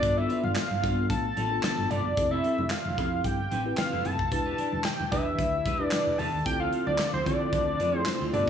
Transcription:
Already playing: tine electric piano B3 D4 F4 A4, analog synth lead D5
0.03 fingered electric bass G1, muted clean electric guitar stroke, kick, closed hi-hat
0.17 clean electric guitar B3 F4 A4, analog synth lead E5
0.29 clean electric guitar B3 F4 B4, closed hi-hat, muted conga
0.44 fingered electric bass G1, analog synth lead F5, muted clean electric guitar stroke, high conga
0.56 snare, clap, closed hi-hat, muted conga
0.70 fingered electric bass G1, muted clean electric guitar stroke, high conga
0.83 fingered electric bass G2, tine electric piano A#3 D4 F4 A4, clean electric guitar B3 F4 A4, kick, closed hi-hat, low conga
0.90 tine electric piano B3
0.97 muted clean electric guitar stroke
1.10 fingered electric bass A1, analog synth lead A5, muted clean electric guitar stroke, kick, closed hi-hat, muted conga, high conga
1.24 muted clean electric guitar stroke
1.36 fingered electric bass A1, clean electric guitar B3 F4 A4, closed hi-hat, high conga
1.51 tine electric piano B3 D4 F4 A4, muted clean electric guitar stroke
1.63 snare, clap, closed hi-hat, muted conga, high conga
1.78 fingered electric bass G1, muted clean electric guitar stroke
1.90 fingered electric bass G1, clean electric guitar B3 F4 A4, analog synth lead D5, closed hi-hat, low conga
2.04 fingered electric bass F#1, muted clean electric guitar stroke
2.17 fingered electric bass F1, tine electric piano C4 E4 G4 A4, muted clean electric guitar stroke, kick, closed hi-hat, muted conga
2.31 clean electric guitar C4 E4 A4, analog synth lead E5
2.44 clean electric guitar C4 E4 A4, closed hi-hat, muted conga
2.58 fingered electric bass F1, muted clean electric guitar stroke, high conga
2.70 analog synth lead F5, snare, clap, closed hi-hat, muted conga
2.85 fingered electric bass F1, muted clean electric guitar stroke, high conga
2.97 fingered electric bass F2, clean electric guitar C4 E4 A4, tine electric piano C4 E4 G4 A4, kick, closed hi-hat, low conga
3.11 muted clean electric guitar stroke
3.24 fingered electric bass G1, analog synth lead G5, muted clean electric guitar stroke, kick, closed hi-hat, muted conga, high conga
3.38 muted clean electric guitar stroke
3.51 fingered electric bass A1, clean electric guitar C4 E4 B4, closed hi-hat, high conga
3.65 tine electric piano C4 E4 G4 B4, muted clean electric guitar stroke
3.77 analog synth lead F5, snare, clap, closed hi-hat, muted conga, high conga
3.92 fingered electric bass F1, clean electric guitar C4 E4 A4
4.05 fingered electric bass F#1, clean electric guitar C4 E4 B4, analog synth lead A5, closed hi-hat, muted conga, low conga
4.19 fingered electric bass F1, muted clean electric guitar stroke, kick
4.31 fingered electric bass E1, tine electric piano D4 E4 G4 B4, muted clean electric guitar stroke, kick, closed hi-hat, muted conga
4.46 clean electric guitar D4 G4 B4
4.58 clean electric guitar D4 G4 D5, closed hi-hat, muted conga
4.72 fingered electric bass E1, muted clean electric guitar stroke, high conga
4.84 analog synth lead G5, snare, clap, closed hi-hat, muted conga
4.99 fingered electric bass E1, muted clean electric guitar stroke, high conga
5.12 fingered electric bass E2, tine electric piano D4 E4 G4 B4, clean electric guitar D4 G4 B4, analog synth lead E5, kick, closed hi-hat, low conga
5.26 muted clean electric guitar stroke
5.39 fingered electric bass D2, kick, closed hi-hat, muted conga, high conga
5.53 muted clean electric guitar stroke
5.65 fingered electric bass E1, clean electric guitar D4 G4 B4, kick, closed hi-hat, high conga
5.79 tine electric piano D4 E4 G4 B4, muted clean electric guitar stroke
5.84 analog synth lead D5
5.91 snare, clap, closed hi-hat, muted conga, high conga
6.07 fingered electric bass E1, muted clean electric guitar stroke
6.18 fingered electric bass E2, clean electric guitar D4 G4 B4, analog synth lead A5, open hi-hat, muted conga, low conga
6.33 fingered electric bass D#2, muted clean electric guitar stroke
6.45 fingered electric bass D2, string section D3 F3 A3 C4, tine electric piano C4 E4 F4 A4, analog synth lead G5, muted clean electric guitar stroke, kick, closed hi-hat
6.60 clean electric guitar C4 F4 A4, analog synth lead F5
6.72 clean electric guitar C4 F4 A4, closed hi-hat
6.87 fingered electric bass D2, analog synth lead D5, muted clean electric guitar stroke, high conga
6.98 snare, clap, closed hi-hat
7.14 fingered electric bass D2, analog synth lead C5, muted clean electric guitar stroke, high conga
7.26 fingered electric bass D3, clean electric guitar C4 F4 A4, tine electric piano C4 E4 F4 G4, analog synth lead D5, kick, closed hi-hat, low conga
7.33 tine electric piano A4
7.40 muted clean electric guitar stroke
7.53 fingered electric bass D2, muted clean electric guitar stroke, kick, closed hi-hat, muted conga, high conga
7.67 muted clean electric guitar stroke
7.79 fingered electric bass F2, clean electric guitar C4 F4 B4, closed hi-hat, muted conga, high conga
7.93 tine electric piano C4 E4 F4 G#4, muted clean electric guitar stroke
7.98 tine electric piano A4, analog synth lead C5
8.06 snare, clap, closed hi-hat, muted conga, high conga
8.20 fingered electric bass D2, clean electric guitar C4 F4 A4
8.33 fingered electric bass G1, string section F3 B3 G4, clean electric guitar B3 F4 B4, tine electric piano B3 D4 F4 A4, analog synth lead D5, closed hi-hat, muted conga, low conga

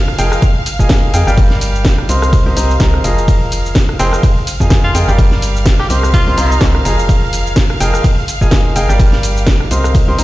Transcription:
Already playing: fm bass F1, grand piano F3 G#4 A#4 D#5 F5 A#5, violin section F5 F6
0.08 cross-stick
0.19 fm bass F1, grand piano F3 G#4 A#4 D#5 F5 G5, open hi-hat, shaker
0.32 cross-stick, shaker
0.42 kick, ride, shaker
0.66 open hi-hat, shaker
0.79 fm bass F1, grand piano F3 G#4 A#4 D#5 F5 G#5, kick, shaker
0.89 kick, snare, ride, shaker
1.14 fm bass F2, grand piano G#4 A#4 D#5 F5 G5, open hi-hat, shaker
1.27 fm bass G1, grand piano G3 G4 A#4 D5 F5 G5, shaker
1.38 kick, ride, shaker
1.50 snare
1.61 open hi-hat, shaker
1.75 shaker
1.85 kick, snare, ride, shaker
1.98 cross-stick
2.09 fm bass C2, grand piano C4 G4 A#4 C5 D#5 C6, open hi-hat, shaker
2.22 cross-stick, shaker
2.33 kick, ride, shaker
2.46 fm bass C2, grand piano C4 G4 A#4 C5 D#5 C6
2.57 fm bass C2, grand piano C4 G4 A#4 C5 D#5 A#5, open hi-hat, shaker
2.71 shaker
2.80 fm bass C2, grand piano C4 G4 A#4 C5 D#5 A#5, kick, snare, ride, shaker
2.94 cross-stick
3.04 fm bass F1, grand piano F3 G#4 A#4 D#5 F5 A#5, open hi-hat, shaker
3.18 shaker
3.28 violin section F5 F6, kick, ride, shaker
3.52 open hi-hat, shaker
3.66 shaker
3.75 kick, snare, ride, shaker
3.89 cross-stick
3.99 fm bass F1, grand piano F3 G#4 A#4 D#5 F5 G5, tenor saxophone C4, open hi-hat, shaker
4.13 cross-stick, shaker
4.23 kick, ride, shaker
4.47 open hi-hat, shaker
4.60 fm bass F2, grand piano F3 G#4 A#4 D#5 F5 G#5, kick, shaker
4.70 kick, snare, ride, shaker
4.84 tenor saxophone F4
4.95 fm bass F2, grand piano G#4 A#4 D#5 F5 G5, open hi-hat, shaker
5.08 fm bass G1, grand piano G3 G4 A#4 D5 F5 G5, shaker
5.18 kick, ride, shaker
5.31 snare
5.42 open hi-hat, shaker
5.56 shaker
5.66 kick, snare, ride, shaker
5.79 tenor saxophone G4, cross-stick
5.90 fm bass C2, grand piano C4 G4 A#4 C5 D#5 C6, tenor saxophone G4, open hi-hat, shaker
6.03 cross-stick, shaker
6.14 tenor saxophone F4, kick, ride, shaker
6.27 fm bass C2, grand piano C4 G4 A#4 C5 D#5 C6
6.38 fm bass C2, grand piano C4 G4 A#4 C5 D#5 A#5, open hi-hat, shaker
6.52 shaker
6.61 fm bass C2, grand piano C4 G4 A#4 C5 D#5 A#5, kick, snare, ride, shaker
6.75 cross-stick
6.85 fm bass F1, grand piano F3 G#4 A#4 D#5 F5 A#5, open hi-hat, shaker
6.99 shaker
7.09 kick, ride, shaker
7.33 open hi-hat, shaker
7.47 shaker
7.56 kick, snare, ride, shaker
7.70 cross-stick
7.80 fm bass F1, grand piano F3 G#4 A#4 D#5 F5 G5, open hi-hat, shaker
7.94 cross-stick, shaker
8.04 kick, ride, shaker
8.28 open hi-hat, shaker
8.41 fm bass F1, grand piano F3 G#4 A#4 D#5 F5 G#5, kick, shaker
8.51 kick, snare, ride, shaker
8.76 fm bass F1, grand piano G#4 A#4 D#5 F5 G5, open hi-hat, shaker
8.89 fm bass G1, grand piano G3 G4 A#4 D5 F5 G5, shaker
8.99 kick, ride, shaker
9.12 snare
9.23 open hi-hat, shaker
9.37 shaker
9.47 kick, snare, ride, shaker
9.60 cross-stick
9.71 fm bass C2, grand piano C4 G4 A#4 C5 D#5 C6, open hi-hat, shaker
9.84 cross-stick, shaker
9.95 kick, ride, shaker
10.08 fm bass C2, grand piano C4 G4 A#4 C5 D#5 C6
10.18 fm bass C2, grand piano C4 G4 A#4 C5 D#5 A#5, open hi-hat, shaker

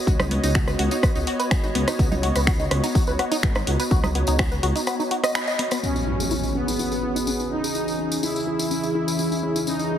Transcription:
Already playing: analog synth pad B3 F#4 C#5 D#5
0.07 detuned saw bass C#2, synth arpeggio sound F#4, kick, closed hi-hat, tambourine
0.20 synth arpeggio sound D#4, cross-stick, tambourine, low conga
0.31 synth arpeggio sound B3, open hi-hat
0.44 detuned saw bass C#2, synth arpeggio sound D#4, closed hi-hat, tambourine
0.55 synth arpeggio sound F#4, finger snap, kick, closed hi-hat, tambourine
0.68 synth arpeggio sound B4, cross-stick, tambourine
0.79 detuned saw bass C#2, synth arpeggio sound F#4, open hi-hat
0.91 synth arpeggio sound D#4, closed hi-hat, tambourine
1.03 synth arpeggio sound B3, kick, cross-stick, closed hi-hat, tambourine
1.15 detuned saw bass C#2, synth arpeggio sound D#4, tambourine
1.27 synth arpeggio sound F#4, open hi-hat
1.40 synth arpeggio sound B4, closed hi-hat, tambourine
1.51 detuned saw bass G#1, synth arpeggio sound F#4, finger snap, kick, cross-stick, closed hi-hat, tambourine
1.64 synth arpeggio sound D#4, tambourine
1.75 detuned saw bass C#2, synth arpeggio sound B3, open hi-hat
1.88 synth arpeggio sound D#4, cross-stick, closed hi-hat, tambourine
1.99 detuned saw bass C#2, synth arpeggio sound B3, kick, closed hi-hat, tambourine
2.12 synth arpeggio sound D#4, tambourine, low conga
2.23 synth arpeggio sound F#4, open hi-hat
2.36 detuned saw bass C#2, synth arpeggio sound B4, cross-stick, closed hi-hat, tambourine
2.47 synth arpeggio sound F#4, finger snap, kick, closed hi-hat, tambourine
2.60 synth arpeggio sound D#4, tambourine
2.71 detuned saw bass C#2, synth arpeggio sound B3, cross-stick, open hi-hat
2.84 synth arpeggio sound D#4, closed hi-hat, tambourine
2.95 synth arpeggio sound F#4, kick, closed hi-hat, tambourine
3.07 detuned saw bass C#2, synth arpeggio sound B4, tambourine
3.19 synth arpeggio sound F#4, cross-stick, open hi-hat
3.32 synth arpeggio sound D#4, closed hi-hat, tambourine
3.43 detuned saw bass G#1, synth arpeggio sound B3, finger snap, kick, closed hi-hat
3.55 synth arpeggio sound D#4, cross-stick, tambourine
3.67 detuned saw bass C#2, synth arpeggio sound F#4, open hi-hat
3.80 synth arpeggio sound B4, closed hi-hat, tambourine
3.91 detuned saw bass C#2, synth arpeggio sound F#4, kick, closed hi-hat, tambourine
4.04 synth arpeggio sound D#4, cross-stick, tambourine, low conga
4.15 synth arpeggio sound B3, open hi-hat
4.27 detuned saw bass C#2, synth arpeggio sound D#4, closed hi-hat, tambourine
4.39 synth arpeggio sound F#4, finger snap, kick, cross-stick, closed hi-hat, tambourine
4.52 synth arpeggio sound B4, tambourine
4.63 detuned saw bass C#2, synth arpeggio sound F#4, open hi-hat
4.76 synth arpeggio sound D#4, closed hi-hat, tambourine
4.87 synth arpeggio sound B3, cross-stick, closed hi-hat, tambourine
5.00 synth arpeggio sound D#4, tambourine
5.11 synth arpeggio sound F#4, open hi-hat
5.24 synth arpeggio sound D#5, cross-stick, closed hi-hat, tambourine
5.35 synth arpeggio sound B5, finger snap, closed hi-hat, tambourine
5.47 synth arpeggio sound D#5, tambourine
5.59 synth arpeggio sound B3, open hi-hat
5.71 synth arpeggio sound B3, cross-stick, closed hi-hat, tambourine
5.83 ambient pad C#3 E3 C#4 D#5, synth arpeggio sound C#4, supersaw synth C#4, analog synth pad C#4, tambourine, impact
5.96 synth arpeggio sound D#4, tambourine
6.03 analog synth pad G#4
6.07 synth arpeggio sound E4
6.20 synth arpeggio sound G#4, tambourine
6.31 synth arpeggio sound E4, tambourine
6.43 synth arpeggio sound D#4, tambourine
6.55 supersaw synth B3, synth arpeggio sound C#4
6.68 synth arpeggio sound D#4, tambourine
6.79 synth arpeggio sound E4, tambourine
6.92 synth arpeggio sound G#4, tambourine
7.03 synth arpeggio sound E4
7.16 synth arpeggio sound D#4, tambourine
7.27 synth arpeggio sound C#4, tambourine
7.40 synth arpeggio sound D#4, tambourine
7.51 supersaw synth D#4, synth arpeggio sound E4
7.63 synth arpeggio sound G#4, tambourine
7.75 synth arpeggio sound E4, tambourine
7.88 synth arpeggio sound D#4, tambourine
7.99 synth arpeggio sound C#4
8.12 synth arpeggio sound D#4, tambourine
8.23 synth arpeggio sound E4, supersaw synth E4, tambourine
8.35 synth arpeggio sound G#4, tambourine
8.47 synth arpeggio sound E4
8.59 synth arpeggio sound D#4, tambourine
8.71 synth arpeggio sound C#4, tambourine
8.84 synth arpeggio sound D#4, tambourine
8.95 synth arpeggio sound E4
9.08 synth arpeggio sound G#4, tambourine
9.19 synth arpeggio sound E4, tambourine
9.32 synth arpeggio sound D#4, tambourine
9.43 synth arpeggio sound C#4
9.56 synth arpeggio sound D#4, tambourine
9.67 synth arpeggio sound C#4, supersaw synth D#4, tambourine
9.79 synth arpeggio sound D#4, tambourine
9.91 synth arpeggio sound E4

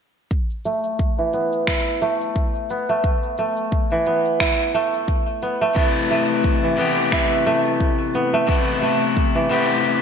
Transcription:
0.31 kick, shaker
0.50 shaker
0.65 kora A3, shaker
0.84 shaker
0.99 kick, shaker
1.18 kora E3, shaker
1.33 kora B3, shaker
1.52 shaker
1.67 kora E4, finger snap, kick, shaker
1.87 shaker
2.02 kora A3, shaker
2.21 shaker
2.36 kick, shaker
2.55 shaker
2.70 kora B3, shaker
2.89 kora A3, shaker
3.04 kick, shaker
3.23 shaker
3.38 kora A3, shaker
3.57 shaker
3.72 kick, shaker
3.91 kora E3, shaker
4.06 kora B3, shaker
4.25 shaker
4.40 kora E4, finger snap, kick, shaker
4.60 shaker
4.74 kora A3, shaker
4.94 shaker
5.08 kick, shaker
5.28 shaker
5.42 kora B3, shaker
5.61 kora A3, shaker
5.75 clean electric guitar C3 E3 A3 B3, kick, shaker
5.79 clean electric guitar E4
5.96 shaker
6.11 kora A3, shaker
6.30 shaker
6.44 kick, shaker
6.64 kora E3, shaker
6.76 clean electric guitar C3 E3 A3 B3, kora B3, shaker
6.81 clean electric guitar G4
6.97 shaker
7.12 kora E4, finger snap, kick, shaker
7.31 shaker
7.46 kora A3, shaker
7.65 shaker
7.80 kick, shaker
7.99 shaker
8.14 kora B3, shaker
8.33 kora A3, shaker
8.47 clean electric guitar C3 E3 A3 B3 E4, kick, shaker
8.68 shaker
8.82 kora A3, shaker
9.02 shaker
9.17 kick, shaker
9.35 kora E3, shaker
9.50 clean electric guitar C3 E3 A3 B3 G4, kora B3, shaker
9.70 shaker
9.85 swell

